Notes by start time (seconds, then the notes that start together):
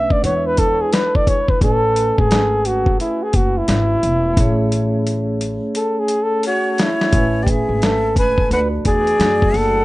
Already playing: A3 C#4 D4 B4 E5
0.10 D5, kick
0.19 G#3 D4
0.24 E2 E4 B4 C#5, closed hi-hat
0.47 B4
0.57 A4, kick, closed hi-hat
0.81 G#4
0.93 B4, snare, closed hi-hat
1.15 D5, kick
1.27 C#5, kick, closed hi-hat
1.48 B4, kick
1.57 A1 A3 C#4, kick
1.62 A4 B4 G#5, closed hi-hat
1.96 closed hi-hat
2.18 G#1 G#4, kick
2.31 snare, closed hi-hat
2.65 F#4, closed hi-hat
2.86 kick
3.00 E4, closed hi-hat
3.23 G#4
3.33 F#1 F#4, kick, closed hi-hat
3.58 E4
3.68 G#1, snare, closed hi-hat
4.03 E1, closed hi-hat
4.33 A1 A3 C#4, kick
4.37 G#4 C#5, closed hi-hat
4.72 closed hi-hat
5.07 closed hi-hat
5.41 closed hi-hat
5.75 A4, closed hi-hat
6.00 G#4
6.08 closed hi-hat
6.23 A4
6.43 F#4 C#5, closed hi-hat
6.78 E4 C#5, snare, closed hi-hat
7.01 snare
7.09 A1 A3 C#4, kick, closed hi-hat
7.14 B4 G#5
7.43 G4 D5, kick
7.48 G#4 E5, closed hi-hat
7.69 G#1
7.82 A4 E5, snare, closed hi-hat
8.16 B4 G#5, kick, closed hi-hat
8.38 kick
8.48 D2 A3 D4, closed hi-hat
8.52 F4 B4 D5 F#5
8.59 F#4
8.85 E2 G#4 D5, kick, closed hi-hat
9.07 closed hi-hat
9.20 F#2, snare, closed hi-hat
9.42 kick
9.54 F#1 A4 F#5, open hi-hat